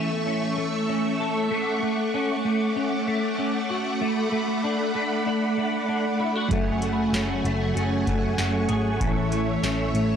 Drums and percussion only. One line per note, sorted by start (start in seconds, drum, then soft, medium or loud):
6.51 kick loud
6.51 closed hi-hat medium
6.82 closed hi-hat medium
7.14 snare loud
7.14 closed hi-hat medium
7.14 tambourine medium
7.45 closed hi-hat medium
7.77 closed hi-hat medium
8.07 kick medium
8.07 closed hi-hat soft
8.38 snare loud
8.38 closed hi-hat medium
8.38 tambourine medium
8.69 closed hi-hat medium
9.01 kick loud
9.01 closed hi-hat medium
9.32 closed hi-hat medium
9.63 snare loud
9.63 closed hi-hat medium
9.63 tambourine medium
9.95 closed hi-hat medium